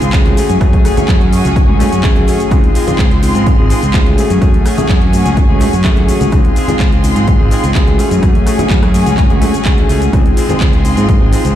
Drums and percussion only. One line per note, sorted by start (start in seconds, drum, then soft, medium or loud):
0.02 closed hi-hat medium
0.02 shaker soft
0.13 kick loud
0.13 clap loud
0.13 closed hi-hat medium
0.13 shaker medium
0.13 shaker soft
0.26 closed hi-hat soft
0.26 high conga medium
0.26 shaker soft
0.37 open hi-hat loud
0.37 shaker medium
0.50 closed hi-hat medium
0.50 shaker soft
0.61 kick loud
0.61 cross-stick medium
0.61 closed hi-hat medium
0.61 shaker medium
0.61 shaker soft
0.73 kick medium
0.73 closed hi-hat soft
0.73 shaker soft
0.85 cross-stick medium
0.85 open hi-hat loud
0.85 shaker medium
0.97 closed hi-hat soft
0.97 high conga medium
0.97 low conga medium
0.97 shaker soft
1.08 kick loud
1.08 clap loud
1.08 closed hi-hat medium
1.08 shaker medium
1.08 shaker soft
1.21 closed hi-hat soft
1.21 low conga medium
1.33 open hi-hat loud
1.33 shaker medium
1.45 closed hi-hat soft
1.45 shaker soft
1.56 kick loud
1.56 closed hi-hat medium
1.56 high conga medium
1.56 shaker medium
1.56 shaker soft
1.80 open hi-hat loud
1.80 low conga loud
1.80 shaker loud
1.80 shaker medium
1.92 closed hi-hat soft
1.92 shaker soft
2.04 kick loud
2.04 clap loud
2.04 closed hi-hat medium
2.04 shaker medium
2.04 shaker soft
2.16 closed hi-hat soft
2.16 high conga loud
2.16 shaker soft
2.27 open hi-hat medium
2.27 shaker medium
2.40 closed hi-hat medium
2.40 shaker soft
2.51 kick loud
2.51 cross-stick medium
2.51 closed hi-hat medium
2.51 shaker medium
2.51 shaker soft
2.64 closed hi-hat soft
2.64 shaker soft
2.75 open hi-hat loud
2.75 shaker medium
2.87 closed hi-hat soft
2.87 high conga medium
2.87 low conga medium
2.87 shaker soft
2.99 kick loud
2.99 clap loud
2.99 closed hi-hat medium
2.99 shaker soft
3.10 closed hi-hat soft
3.10 low conga medium
3.23 open hi-hat loud
3.23 shaker medium
3.35 closed hi-hat medium
3.35 shaker soft
3.46 kick loud
3.46 closed hi-hat medium
3.46 high conga medium
3.46 shaker soft
3.46 shaker medium
3.70 open hi-hat loud
3.70 shaker medium
3.83 closed hi-hat soft
3.83 shaker soft
3.94 kick loud
3.94 clap loud
3.94 closed hi-hat medium
3.94 shaker medium
3.94 shaker soft
4.06 closed hi-hat soft
4.06 high conga medium
4.06 shaker soft
4.18 open hi-hat medium
4.18 shaker medium
4.30 closed hi-hat medium
4.30 shaker soft
4.42 kick loud
4.42 cross-stick medium
4.42 closed hi-hat medium
4.42 shaker soft
4.54 closed hi-hat soft
4.54 shaker soft
4.65 cross-stick medium
4.65 open hi-hat loud
4.65 shaker loud
4.65 shaker medium
4.78 closed hi-hat medium
4.78 high conga medium
4.78 low conga medium
4.78 shaker soft
4.89 kick loud
4.89 clap loud
4.89 closed hi-hat medium
4.89 shaker medium
4.89 shaker soft
5.02 closed hi-hat soft
5.02 low conga medium
5.13 open hi-hat medium
5.13 shaker medium
5.26 closed hi-hat soft
5.26 shaker soft
5.36 kick loud
5.36 closed hi-hat medium
5.36 high conga medium
5.36 shaker medium
5.36 shaker soft
5.60 open hi-hat loud
5.60 low conga loud
5.60 shaker medium
5.73 closed hi-hat medium
5.73 shaker soft
5.84 kick loud
5.84 clap loud
5.84 closed hi-hat medium
5.84 shaker medium
5.84 shaker soft
5.96 closed hi-hat soft
5.96 high conga loud
5.96 shaker soft
6.09 open hi-hat medium
6.09 shaker medium
6.21 closed hi-hat medium
6.21 shaker soft
6.32 kick loud
6.32 cross-stick medium
6.32 closed hi-hat medium
6.32 shaker medium
6.32 shaker soft
6.45 closed hi-hat soft
6.45 shaker soft
6.56 open hi-hat loud
6.56 shaker medium
6.67 closed hi-hat medium
6.67 high conga medium
6.67 low conga medium
6.67 shaker soft
6.69 shaker soft
6.80 kick loud
6.80 clap loud
6.80 closed hi-hat medium
6.80 shaker medium
6.80 shaker soft
6.92 closed hi-hat soft
6.92 low conga medium
7.03 open hi-hat medium
7.03 shaker medium
7.16 closed hi-hat medium
7.16 shaker soft
7.27 kick loud
7.27 closed hi-hat medium
7.27 high conga medium
7.27 shaker soft
7.51 open hi-hat loud
7.51 shaker loud
7.51 shaker medium
7.63 closed hi-hat medium
7.63 shaker soft
7.75 kick loud
7.75 clap loud
7.75 closed hi-hat medium
7.75 shaker medium
7.75 shaker soft
7.87 closed hi-hat soft
7.87 high conga medium
7.87 shaker soft
7.99 open hi-hat medium
7.99 shaker medium
8.11 closed hi-hat medium
8.11 shaker soft
8.23 kick loud
8.23 cross-stick medium
8.23 closed hi-hat medium
8.23 shaker soft
8.23 shaker medium
8.35 closed hi-hat soft
8.35 shaker soft
8.47 cross-stick medium
8.47 open hi-hat loud
8.47 shaker loud
8.47 shaker medium
8.59 closed hi-hat medium
8.59 high conga medium
8.59 low conga medium
8.59 shaker soft
8.70 kick loud
8.70 clap loud
8.70 closed hi-hat medium
8.70 shaker medium
8.70 shaker soft
8.83 cross-stick medium
8.83 closed hi-hat soft
8.83 low conga medium
8.94 open hi-hat medium
8.94 shaker medium
9.06 closed hi-hat medium
9.06 shaker soft
9.18 kick loud
9.18 clap medium
9.18 closed hi-hat medium
9.18 high conga medium
9.18 shaker medium
9.18 shaker soft
9.30 closed hi-hat soft
9.30 shaker soft
9.41 open hi-hat loud
9.41 low conga loud
9.41 shaker loud
9.41 shaker medium
9.54 closed hi-hat medium
9.54 shaker soft
9.65 kick loud
9.65 clap loud
9.65 closed hi-hat medium
9.65 shaker medium
9.65 shaker soft
9.78 closed hi-hat soft
9.78 high conga medium
9.78 shaker soft
9.89 open hi-hat medium
9.89 shaker medium
10.02 closed hi-hat medium
10.02 shaker soft
10.13 kick loud
10.13 cross-stick medium
10.13 closed hi-hat medium
10.13 shaker medium
10.13 shaker soft
10.26 closed hi-hat soft
10.26 shaker soft
10.37 open hi-hat loud
10.37 shaker loud
10.37 shaker medium
10.49 closed hi-hat medium
10.49 high conga loud
10.49 low conga loud
10.49 shaker soft
10.60 kick loud
10.60 clap loud
10.60 closed hi-hat medium
10.60 shaker soft
10.60 shaker medium
10.73 closed hi-hat soft
10.73 low conga medium
10.85 open hi-hat loud
10.85 shaker medium
10.97 closed hi-hat medium
10.97 shaker soft
11.09 kick loud
11.09 closed hi-hat medium
11.09 high conga medium
11.09 shaker soft
11.33 open hi-hat loud
11.33 shaker loud
11.33 shaker medium
11.45 closed hi-hat medium
11.45 shaker soft